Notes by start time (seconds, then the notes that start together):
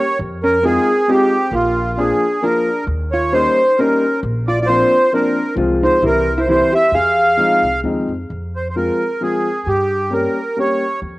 Already playing: G4 C#5
0.19 F2
0.44 C#4 A#4
0.63 G#3 C4 D#4 F4 G#4
1.08 G#3 C4 D#4 F4 G4
1.51 A#1 A#3 F4
1.97 F3 A#3 D4 F4 G#4
2.42 F3 A#3 D4 F4 A#4
2.87 D#2
3.12 F4 C#5
3.32 G3 A#3 C#4 D#4 C5
3.79 G3 A#3 C#4 D#4 A#4
4.23 A#1
4.48 F4 D5
4.61 F4 D5
4.66 F3 A#3 C4 D4 F4 C5
5.13 F3 A#3 C4 D4 A#4
5.55 C2 F3 G#3 C4 F4
5.83 D#4 C5
6.02 C2 E3 G3 C4 E4
6.06 A#4
6.38 E4 C5
6.48 E3 G3 C4 E4 C5
6.72 G4 E5
6.92 F2 G#4 F5
7.37 F3 G#3 C4 D#4
7.63 C2
7.83 D#2 F3 G#3 C4 D#4
8.08 F2
8.30 F2
8.56 C5
8.69 C5
8.75 F3 G#3 C4 F4 A#4
9.21 F3 G#3 C4 F4 G#4
9.66 G2 G4
10.11 G3 A#3 C#4 G4 A#4
10.57 G3 A#3 C#4 G4 C#5
11.02 F2